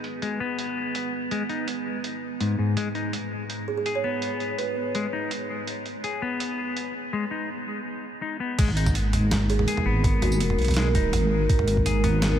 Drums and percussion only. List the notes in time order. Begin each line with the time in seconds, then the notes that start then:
0.04 closed hi-hat
0.22 closed hi-hat
0.59 closed hi-hat
0.95 closed hi-hat
1.31 closed hi-hat
1.49 closed hi-hat
1.68 closed hi-hat
2.04 closed hi-hat
2.40 closed hi-hat
2.77 closed hi-hat
2.95 closed hi-hat
3.13 closed hi-hat
3.50 closed hi-hat
3.86 closed hi-hat
4.22 closed hi-hat
4.40 closed hi-hat
4.58 closed hi-hat
4.95 closed hi-hat
5.31 closed hi-hat
5.67 closed hi-hat
5.86 closed hi-hat
6.04 closed hi-hat
6.40 closed hi-hat
6.77 closed hi-hat
8.59 kick, closed hi-hat, crash
8.68 mid tom
8.77 closed hi-hat
8.86 kick, mid tom, tambourine
8.95 closed hi-hat
9.13 closed hi-hat, mid tom
9.31 snare, closed hi-hat, mid tom
9.50 closed hi-hat
9.59 mid tom
9.68 closed hi-hat
9.77 mid tom
10.04 kick, closed hi-hat, mid tom
10.22 closed hi-hat, mid tom
10.32 tambourine
10.40 closed hi-hat
10.50 mid tom
10.59 closed hi-hat
10.62 closed hi-hat
10.65 closed hi-hat
10.68 closed hi-hat, mid tom
10.71 closed hi-hat
10.74 snare, closed hi-hat
10.77 closed hi-hat
10.95 kick, closed hi-hat, mid tom
11.13 closed hi-hat, mid tom
11.49 kick, closed hi-hat
11.59 mid tom
11.68 closed hi-hat
11.77 kick
11.86 closed hi-hat, mid tom, tambourine
12.04 closed hi-hat, mid tom
12.22 snare, closed hi-hat
12.32 mid tom